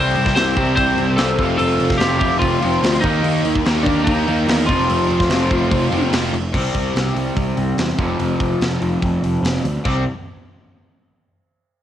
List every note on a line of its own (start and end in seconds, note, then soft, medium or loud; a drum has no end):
0.00 0.14 C2 loud
0.00 0.55 C3 medium
0.00 0.56 C3 medium
0.00 0.56 E3 medium
0.00 0.56 G3 loud
0.00 0.57 G3 loud
0.00 0.55 C4 loud
0.00 0.57 C4 medium
0.00 0.56 E4 loud
0.00 0.34 G4 loud
0.00 0.34 C5 loud
0.15 0.35 C2 medium
0.15 crash medium
0.26 kick medium
0.26 snare soft
0.36 0.56 C2 medium
0.36 0.75 G4 loud
0.36 0.74 C5 loud
0.36 snare loud
0.36 crash medium
0.56 0.76 C2 medium
0.56 1.17 C3 medium
0.56 1.38 E3 medium
0.56 1.18 G3 medium
0.56 1.39 G3 medium
0.56 1.17 C4 medium
0.56 1.39 C4 medium
0.56 1.38 E4 loud
0.56 kick medium
0.56 crash medium
0.60 1.40 C3 medium
0.76 0.97 C2 loud
0.76 1.16 G4 medium
0.76 1.16 C5 loud
0.76 kick loud
0.76 crash medium
0.98 1.17 C2 loud
0.98 crash medium
1.16 1.38 C2 medium
1.16 1.38 C3 medium
1.16 1.39 G3 medium
1.16 1.39 C4 medium
1.16 1.57 F4 medium
1.16 1.56 A4 medium
1.16 snare loud
1.16 crash medium
1.39 1.58 F1 loud
1.39 2.00 F2 medium
1.39 2.00 C3 medium
1.39 2.00 F3 loud
1.39 2.01 F3 medium
1.39 2.00 A3 loud
1.39 2.01 C4 loud
1.39 2.01 F4 loud
1.39 kick loud
1.39 crash medium
1.58 1.79 F1 loud
1.58 1.97 F4 loud
1.58 2.01 A4 loud
1.58 crash medium
1.80 2.00 F1 medium
1.80 crash medium
1.90 kick medium
1.90 snare soft
1.98 2.20 F1 loud
1.98 2.62 F2 medium
1.98 3.03 F3 medium
1.98 2.20 C4 medium
1.98 2.18 G4 loud
1.98 snare loud
1.98 crash medium
2.02 2.62 C3 medium
2.02 2.61 F3 medium
2.02 3.04 A3 medium
2.02 3.04 C4 medium
2.02 3.05 F4 medium
2.19 2.40 F1 medium
2.19 2.40 E4 medium
2.19 2.39 G4 medium
2.19 kick medium
2.19 crash medium
2.39 2.61 F1 loud
2.39 2.99 C4 medium
2.39 3.00 F4 loud
2.39 kick loud
2.39 crash medium
2.62 2.82 F1 loud
2.62 3.04 F2 medium
2.62 3.03 C3 medium
2.62 3.03 F3 loud
2.62 crash medium
2.83 3.02 D2 loud
2.83 snare loud
2.83 crash loud
3.00 3.23 D#2 loud
3.00 3.64 D#3 medium
3.00 3.64 D#3 loud
3.00 3.60 A#3 medium
3.00 3.60 D#4 medium
3.00 kick loud
3.00 crash medium
3.05 3.65 A#3 loud
3.05 3.65 D#4 medium
3.05 3.66 D#4 loud
3.05 3.66 G4 loud
3.24 3.43 D#2 medium
3.24 crash medium
3.45 3.64 D#2 medium
3.45 crash medium
3.55 kick medium
3.65 3.85 D#2 loud
3.65 4.26 D#3 medium
3.65 4.67 D#3 medium
3.65 4.27 A#3 medium
3.65 4.68 A#3 medium
3.65 4.25 D#4 loud
3.65 4.69 D#4 medium
3.65 4.69 G4 loud
3.65 snare loud
3.65 crash medium
3.83 4.05 D#2 medium
3.83 4.02 A#3 medium
3.83 4.04 D4 medium
3.83 kick medium
3.83 crash medium
4.03 4.26 D#2 loud
4.03 4.63 A#3 medium
4.03 4.66 D#4 medium
4.03 kick loud
4.07 crash medium
4.26 4.47 D#2 loud
4.26 4.68 D#3 medium
4.26 4.68 A#3 medium
4.26 4.67 D#4 medium
4.26 crash medium
4.48 4.67 E2 medium
4.48 snare loud
4.48 crash medium
4.66 4.88 F1 medium
4.66 5.28 F2 medium
4.66 5.29 C3 loud
4.66 5.28 F3 medium
4.66 5.30 F3 loud
4.66 5.30 A3 loud
4.66 6.08 C4 medium
4.66 6.08 F4 medium
4.66 kick loud
4.66 crash medium
4.71 5.31 C4 loud
4.71 5.31 F4 loud
4.89 5.09 F1 loud
4.89 crash medium
5.09 5.29 F1 medium
5.09 crash medium
5.20 kick medium
5.20 snare soft
5.29 5.49 F1 medium
5.29 5.91 F2 medium
5.29 5.91 C3 loud
5.29 6.32 F3 medium
5.29 5.89 F3 loud
5.29 6.33 A3 medium
5.29 6.34 C4 medium
5.29 snare loud
5.29 crash medium
5.33 6.34 F4 medium
5.51 5.70 F1 medium
5.51 kick medium
5.51 crash medium
5.71 5.90 F1 loud
5.71 kick loud
5.71 crash medium
5.90 6.11 F1 loud
5.90 6.33 F2 medium
5.90 6.33 C3 medium
5.90 6.32 F3 loud
5.90 crash medium
6.13 6.32 F1 medium
6.13 snare loud
6.13 crash loud
6.33 6.55 F1 medium
6.33 crash medium
6.53 6.68 C2 medium
6.53 7.97 C3 medium
6.53 7.98 G3 medium
6.53 9.86 C4 loud
6.53 kick loud
6.53 crash loud
6.75 6.89 C2 medium
6.75 kick medium
6.75 open hi-hat medium
6.95 7.10 C2 medium
6.95 snare loud
6.95 open hi-hat medium
7.16 7.30 C2 medium
7.16 open hi-hat medium
7.37 7.51 C2 medium
7.37 kick medium
7.37 open hi-hat medium
7.57 7.72 C2 medium
7.57 open hi-hat medium
7.78 7.92 E2 medium
7.78 snare loud
7.78 open hi-hat medium
7.97 8.13 F1 loud
7.97 9.63 F2 medium
7.97 9.64 C3 medium
7.97 9.64 F3 medium
7.97 kick loud
7.97 open hi-hat medium
8.20 8.34 F1 medium
8.20 open hi-hat medium
8.40 8.54 F1 medium
8.40 kick medium
8.40 open hi-hat medium
8.61 8.76 F1 medium
8.61 snare loud
8.61 open hi-hat medium
8.82 8.96 F1 medium
8.82 open hi-hat medium
9.02 9.17 F1 loud
9.02 kick medium
9.02 open hi-hat medium
9.23 9.37 F1 loud
9.23 open hi-hat medium
9.43 9.57 F1 loud
9.43 snare loud
9.43 open hi-hat medium
9.64 9.78 D2 loud
9.64 open hi-hat medium
9.84 10.05 C2 loud
9.84 10.02 C3 medium
9.84 10.02 G3 loud
9.84 10.03 C4 loud
9.84 kick loud
9.84 crash medium